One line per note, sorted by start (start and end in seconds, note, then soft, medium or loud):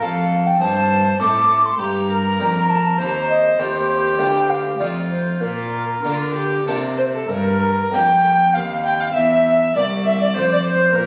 0.00 0.57 F2 medium
0.00 0.60 F2 medium
0.00 0.61 A4 medium
0.00 0.48 F5 loud
0.46 0.62 G5 medium
0.61 1.19 G2 medium
0.61 1.16 G2 medium
0.61 1.03 C4 soft
0.61 1.04 D#4 soft
0.61 1.21 C5 medium
0.61 1.04 C5 soft
0.61 1.20 A5 loud
1.20 1.75 A2 medium
1.20 1.78 A2 medium
1.20 1.63 C4 medium
1.20 1.63 D#4 soft
1.20 1.78 A4 medium
1.20 1.64 C5 medium
1.20 1.67 D6 loud
1.65 1.81 C6 medium
1.79 2.35 G2 medium
1.79 2.42 G2 medium
1.79 2.09 G4 medium
1.79 2.71 A#5 loud
2.11 3.00 A#4 medium
2.40 2.95 F2 medium
2.40 2.99 F2 medium
2.40 2.83 A#3 soft
2.40 2.83 D4 soft
2.40 2.83 G4 soft
2.69 3.01 A5 medium
2.98 3.57 D#2 medium
2.98 3.56 D#2 medium
2.98 3.56 C4 soft
2.98 3.56 G4 soft
2.98 3.60 C5 medium
2.98 3.29 A#5 medium
3.29 3.61 D#5 medium
3.58 4.20 D#2 medium
3.58 4.16 D#2 medium
3.58 4.16 A3 soft
3.58 4.16 C4 soft
3.58 4.16 F4 soft
3.58 4.82 G4 medium
3.58 4.21 C5 loud
4.19 4.76 D2 medium
4.19 4.80 D2 medium
4.19 4.76 A#3 soft
4.19 4.77 D4 soft
4.19 4.77 F4 soft
4.19 4.51 G5 medium
4.50 4.78 F5 medium
4.79 5.38 F2 medium
4.79 5.41 F2 medium
4.79 5.38 A3 soft
4.79 5.38 D#4 soft
4.79 5.42 F4 medium
4.79 5.38 F4 soft
4.79 4.86 D5 medium
5.10 5.42 C5 medium
5.41 6.00 A#2 soft
5.41 6.04 A#2 medium
5.41 5.97 F4 medium
5.41 6.67 A#4 medium
6.04 6.66 D3 medium
6.04 6.64 D3 soft
6.04 6.50 A#3 soft
6.04 6.51 D4 soft
6.04 6.33 F4 medium
6.04 6.51 F4 soft
6.35 6.66 G4 medium
6.67 7.29 C3 medium
6.67 7.27 C3 medium
6.67 7.13 A#3 soft
6.67 7.13 D4 soft
6.67 7.14 F4 soft
6.67 6.75 A4 medium
6.97 7.04 C5 medium
6.97 7.03 C5 medium
7.15 7.29 A4 medium
7.15 7.30 A4 medium
7.28 7.90 G2 medium
7.28 7.92 A#4 medium
7.28 7.96 A#4 medium
7.93 8.51 F2 medium
7.93 8.57 F2 medium
7.93 8.37 A#3 soft
7.93 8.38 D4 soft
7.93 8.38 G4 medium
7.93 8.55 G5 loud
7.93 8.57 G5 medium
8.54 9.12 D#2 medium
8.54 9.15 D#2 medium
8.54 9.12 C4 soft
8.54 9.12 G4 soft
8.54 8.84 F5 medium
8.54 8.85 F5 medium
8.85 8.91 G5 loud
8.85 9.02 G5 medium
9.00 9.16 F5 loud
9.00 9.14 F5 medium
9.14 9.75 E2 medium
9.14 9.72 E2 medium
9.14 9.75 E5 loud
9.14 9.74 E5 loud
9.76 10.32 C2 medium
9.76 10.37 C2 medium
9.76 10.19 A#3 medium
9.76 10.19 C4 soft
9.76 10.20 G4 medium
9.76 9.82 D5 loud
9.76 10.05 D5 medium
10.05 10.20 E5 loud
10.05 10.20 E5 medium
10.21 10.27 D5 loud
10.21 10.36 D5 medium
10.34 10.91 F2 medium
10.34 10.94 F2 medium
10.34 10.91 A3 medium
10.34 10.91 C4 medium
10.34 10.92 F4 medium
10.34 10.49 C5 medium
10.34 10.51 C5 loud
10.49 10.64 D5 medium
10.49 10.58 D5 medium
10.65 10.93 C5 medium
10.65 10.98 C5 loud
10.93 11.06 A#2 medium
10.93 11.06 A#4 medium
10.93 11.06 A#4 loud